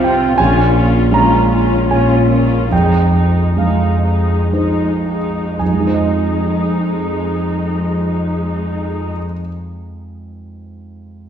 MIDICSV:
0, 0, Header, 1, 4, 480
1, 0, Start_track
1, 0, Key_signature, -4, "minor"
1, 0, Tempo, 732601
1, 253, Time_signature, 3, 2, 24, 8
1, 738, Tempo, 780234
1, 1218, Tempo, 834492
1, 2178, Tempo, 961538
1, 2658, Tempo, 1045296
1, 3618, Tempo, 1018676
1, 5816, End_track
2, 0, Start_track
2, 0, Title_t, "Grand piano"
2, 0, Program_c, 0, 0
2, 0, Control_c, 0, 64, 127
2, 0, Note_on_c, 0, 36, 40
2, 0, Note_on_c, 0, 60, 33
2, 0, Note_on_c, 0, 65, 34
2, 0, Note_on_c, 0, 77, 38
2, 0, Note_on_c, 0, 79, 57
2, 27, Note_off_c, 0, 79, 0
2, 27, Note_on_c, 0, 79, 55
2, 225, Note_off_c, 0, 65, 0
2, 226, Note_off_c, 0, 77, 0
2, 230, Note_off_c, 0, 36, 0
2, 241, Note_off_c, 0, 79, 0
2, 247, Note_on_c, 0, 80, 68
2, 257, Note_on_c, 0, 34, 38
2, 265, Control_c, 0, 64, 0
2, 268, Note_off_c, 0, 60, 0
2, 386, Control_c, 0, 64, 127
2, 710, Note_off_c, 0, 80, 0
2, 734, Note_on_c, 0, 56, 32
2, 746, Note_on_c, 0, 82, 61
2, 1197, Note_off_c, 0, 82, 0
2, 1217, Note_on_c, 0, 65, 33
2, 1219, Note_on_c, 0, 80, 53
2, 1220, Note_on_c, 0, 73, 33
2, 1493, Note_off_c, 0, 56, 0
2, 1660, Note_off_c, 0, 65, 0
2, 1661, Note_off_c, 0, 80, 0
2, 1662, Note_off_c, 0, 73, 0
2, 1663, Note_off_c, 0, 34, 0
2, 1681, Note_on_c, 0, 41, 32
2, 1688, Note_on_c, 0, 79, 49
2, 1696, Control_c, 0, 64, 0
2, 1787, Control_c, 0, 64, 127
2, 2157, Note_off_c, 0, 79, 0
2, 2174, Note_on_c, 0, 56, 26
2, 2179, Note_on_c, 0, 77, 36
2, 2638, Note_off_c, 0, 77, 0
2, 2655, Note_on_c, 0, 63, 24
2, 2656, Note_on_c, 0, 72, 24
2, 2949, Note_off_c, 0, 56, 0
2, 3126, Note_off_c, 0, 41, 0
2, 3126, Note_off_c, 0, 63, 0
2, 3127, Note_off_c, 0, 72, 0
2, 3143, Note_on_c, 0, 41, 23
2, 3143, Note_on_c, 0, 80, 32
2, 3159, Control_c, 0, 64, 0
2, 3172, Note_on_c, 0, 53, 23
2, 3205, Note_on_c, 0, 56, 22
2, 3238, Note_on_c, 0, 63, 26
2, 3262, Control_c, 0, 64, 127
2, 3270, Note_on_c, 0, 72, 25
2, 3303, Note_on_c, 0, 75, 24
2, 4791, Note_off_c, 0, 41, 0
2, 4791, Note_off_c, 0, 80, 0
2, 4821, Note_off_c, 0, 53, 0
2, 4854, Note_off_c, 0, 56, 0
2, 4888, Note_off_c, 0, 63, 0
2, 4921, Note_off_c, 0, 72, 0
2, 4955, Note_off_c, 0, 75, 0
2, 5816, End_track
3, 0, Start_track
3, 0, Title_t, "Viola section"
3, 0, Program_c, 1, 48
3, 14, Note_on_c, 1, 60, 36
3, 18, Note_on_c, 1, 65, 43
3, 241, Note_off_c, 1, 65, 0
3, 246, Note_off_c, 1, 60, 0
3, 248, Note_on_c, 1, 65, 47
3, 249, Note_on_c, 1, 61, 43
3, 485, Note_off_c, 1, 61, 0
3, 485, Note_off_c, 1, 65, 0
3, 494, Note_on_c, 1, 65, 39
3, 495, Note_on_c, 1, 61, 35
3, 731, Note_off_c, 1, 61, 0
3, 732, Note_off_c, 1, 65, 0
3, 739, Note_on_c, 1, 61, 41
3, 740, Note_on_c, 1, 65, 42
3, 972, Note_off_c, 1, 61, 0
3, 973, Note_off_c, 1, 65, 0
3, 981, Note_on_c, 1, 61, 40
3, 984, Note_on_c, 1, 65, 36
3, 1207, Note_off_c, 1, 65, 0
3, 1209, Note_off_c, 1, 61, 0
3, 1215, Note_on_c, 1, 65, 36
3, 1216, Note_on_c, 1, 61, 38
3, 1442, Note_off_c, 1, 65, 0
3, 1443, Note_off_c, 1, 61, 0
3, 1448, Note_on_c, 1, 61, 34
3, 1449, Note_on_c, 1, 65, 32
3, 1679, Note_off_c, 1, 61, 0
3, 1680, Note_off_c, 1, 65, 0
3, 1685, Note_on_c, 1, 63, 39
3, 1686, Note_on_c, 1, 56, 39
3, 1921, Note_off_c, 1, 63, 0
3, 1922, Note_off_c, 1, 56, 0
3, 1931, Note_on_c, 1, 56, 28
3, 1932, Note_on_c, 1, 63, 30
3, 2176, Note_off_c, 1, 56, 0
3, 2176, Note_off_c, 1, 63, 0
3, 2181, Note_on_c, 1, 56, 32
3, 2181, Note_on_c, 1, 63, 33
3, 2407, Note_off_c, 1, 56, 0
3, 2407, Note_off_c, 1, 63, 0
3, 2415, Note_on_c, 1, 56, 29
3, 2415, Note_on_c, 1, 63, 26
3, 2655, Note_off_c, 1, 56, 0
3, 2655, Note_off_c, 1, 63, 0
3, 2665, Note_on_c, 1, 56, 25
3, 2665, Note_on_c, 1, 63, 25
3, 2899, Note_off_c, 1, 63, 0
3, 2900, Note_off_c, 1, 56, 0
3, 2908, Note_on_c, 1, 56, 23
3, 2908, Note_on_c, 1, 63, 22
3, 3142, Note_off_c, 1, 63, 0
3, 3143, Note_off_c, 1, 56, 0
3, 3147, Note_on_c, 1, 63, 29
3, 3148, Note_on_c, 1, 56, 31
3, 4795, Note_off_c, 1, 63, 0
3, 4797, Note_off_c, 1, 56, 0
3, 5816, End_track
4, 0, Start_track
4, 0, Title_t, "Cello section"
4, 0, Program_c, 2, 48
4, 0, Note_on_c, 2, 48, 51
4, 198, Note_off_c, 2, 48, 0
4, 253, Note_on_c, 2, 46, 54
4, 680, Note_off_c, 2, 46, 0
4, 743, Note_on_c, 2, 46, 42
4, 1163, Note_off_c, 2, 46, 0
4, 1227, Note_on_c, 2, 46, 47
4, 1632, Note_off_c, 2, 46, 0
4, 1689, Note_on_c, 2, 41, 50
4, 2120, Note_off_c, 2, 41, 0
4, 2183, Note_on_c, 2, 41, 35
4, 2601, Note_off_c, 2, 41, 0
4, 2659, Note_on_c, 2, 41, 35
4, 3090, Note_off_c, 2, 41, 0
4, 3146, Note_on_c, 2, 41, 33
4, 4794, Note_off_c, 2, 41, 0
4, 5816, End_track
0, 0, End_of_file